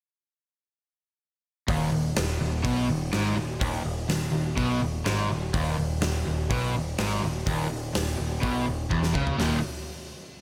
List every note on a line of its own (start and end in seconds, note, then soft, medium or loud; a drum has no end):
1.68 1.91 D#1 loud
1.68 1.91 D#2 medium
1.68 kick loud
1.68 open hi-hat medium
1.92 2.15 D#1 medium
1.92 2.12 D#2 medium
2.16 2.39 D#1 medium
2.16 2.36 D#2 medium
2.16 snare loud
2.16 open hi-hat medium
2.41 2.63 D#1 medium
2.41 2.60 D#2 medium
2.64 2.87 B1 medium
2.64 2.87 B2 loud
2.64 kick medium
2.64 open hi-hat medium
2.88 3.11 D#1 medium
2.88 3.08 D#2 medium
3.13 3.35 G#1 medium
3.13 3.36 G#2 loud
3.13 snare loud
3.13 open hi-hat medium
3.36 3.59 D#1 medium
3.36 3.56 D#2 medium
3.60 3.84 D#1 medium
3.60 3.84 D#2 loud
3.60 kick loud
3.60 open hi-hat medium
3.85 4.07 D#1 medium
3.85 4.04 D#2 medium
4.09 4.32 D#1 medium
4.09 4.28 D#2 medium
4.09 snare loud
4.09 open hi-hat medium
4.32 4.56 D#1 medium
4.32 4.52 D#2 medium
4.56 4.80 B1 medium
4.56 4.80 B2 loud
4.56 kick medium
4.56 open hi-hat medium
4.82 5.05 D#1 medium
4.82 5.01 D#2 medium
5.05 5.29 G#1 medium
5.05 5.29 G#2 medium
5.05 snare loud
5.05 open hi-hat medium
5.29 5.53 D#1 medium
5.29 5.49 D#2 medium
5.54 5.77 D#1 loud
5.54 5.77 D#2 loud
5.54 kick loud
5.54 open hi-hat medium
5.78 6.01 D#1 medium
5.78 5.98 D#2 medium
6.01 6.25 D#1 medium
6.01 6.21 D#2 medium
6.01 snare loud
6.01 open hi-hat medium
6.26 6.49 D#1 medium
6.26 6.46 D#2 medium
6.51 6.73 B1 medium
6.51 6.74 B2 loud
6.51 kick loud
6.51 open hi-hat medium
6.75 6.97 D#1 medium
6.75 6.95 D#2 medium
6.98 7.21 G#1 medium
6.98 7.23 G#2 loud
6.98 snare loud
6.98 open hi-hat medium
7.22 7.46 D#1 medium
7.22 7.42 D#2 medium
7.46 7.70 D#1 loud
7.46 7.69 D#2 loud
7.46 kick loud
7.46 open hi-hat medium
7.70 7.94 D#1 medium
7.70 7.90 D#2 medium
7.93 8.18 D#1 medium
7.93 8.14 D#2 medium
7.93 snare loud
7.93 open hi-hat medium
8.17 8.42 D#1 medium
8.17 8.38 D#2 medium
8.41 8.66 B1 medium
8.41 8.66 B2 loud
8.41 kick loud
8.41 open hi-hat medium
8.66 8.91 D#1 medium
8.66 8.86 D#2 medium
8.90 9.14 E1 medium
8.90 9.14 E2 medium
8.90 kick medium
9.03 snare medium
9.14 9.38 C#2 medium
9.14 9.38 C#3 loud
9.14 kick medium
9.27 floor tom medium
9.38 9.62 D#1 loud
9.38 9.58 D#2 medium
9.38 9.58 A#2 loud
9.38 9.59 D#3 medium
9.38 snare loud
9.38 floor tom loud
9.38 open hi-hat medium